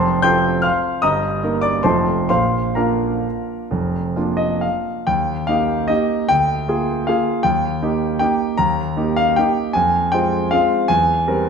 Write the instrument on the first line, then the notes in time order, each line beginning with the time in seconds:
grand piano
Already playing: F1 F2 C5 A5 C6
0.22 C4 F4 A4 G5 C6 G6
0.62 F5 C6 F6
1.02 G1 G2 D#5 A#5 D#6
1.43 A#3 D#4 A#4
1.61 D5 D6
1.83 F1 F2 A3 D#4 F4 C5 A5 C6
2.29 A#1 A#2 C5 F5 C6
2.75 A#3 D4 F4 A#4 F5 A#5
3.71 F1 F2
4.16 A#3 D4 F4
4.37 D#5
4.61 F5
5.07 D#2 G5
5.47 A#3 D#4 G4 F5
5.88 A#3 D#4 G4 D#5
6.29 D2 G5
6.68 A#3 F4 G#4
7.07 A#3 F4 G#4 F5
7.43 D#2 G5
7.82 A#3 D#4 G4
8.19 A#3 D#4 G4 G5
8.58 D#2 A#5
8.97 A#3 D#4 G4
9.16 F5
9.36 A#3 D#4 G4 G5
9.73 F2 G#5
10.12 G#3 C4 F4 G5
10.51 G#3 C4 F4 F5
10.88 E2 G#5
11.27 G3 C4 A#4